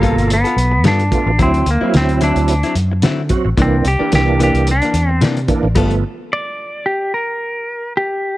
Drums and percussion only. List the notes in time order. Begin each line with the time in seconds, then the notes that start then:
0.03 kick, closed hi-hat
0.18 closed hi-hat
0.30 closed hi-hat
0.45 closed hi-hat
0.58 closed hi-hat
0.84 snare, closed hi-hat
1.00 closed hi-hat
1.12 kick, closed hi-hat
1.39 kick, closed hi-hat
1.54 closed hi-hat
1.66 closed hi-hat
1.94 snare, closed hi-hat
2.09 closed hi-hat
2.21 closed hi-hat
2.36 closed hi-hat
2.48 closed hi-hat
2.63 closed hi-hat
2.75 closed hi-hat
3.02 snare, closed hi-hat
3.29 kick, closed hi-hat
3.58 kick, closed hi-hat
3.85 closed hi-hat
4.12 snare, closed hi-hat
4.40 closed hi-hat
4.55 closed hi-hat
4.67 closed hi-hat
4.82 closed hi-hat
4.94 closed hi-hat
5.21 snare, closed hi-hat
5.37 closed hi-hat
5.48 kick, closed hi-hat
5.76 kick, closed hi-hat, crash
5.91 closed hi-hat